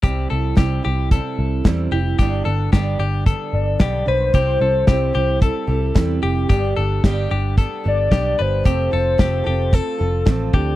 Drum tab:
HH |x-x-x-x-|x-x-x-x-|x-x-x-x-|x-x-x-x-|
SD |--o---o-|--o---o-|--o---o-|--o---o-|
BD |o-o-o-o-|o-o-o-o-|o-o-o-o-|o-o-o-o-|

HH |x-x-x-x-|
SD |--o---o-|
BD |o-o-o-oo|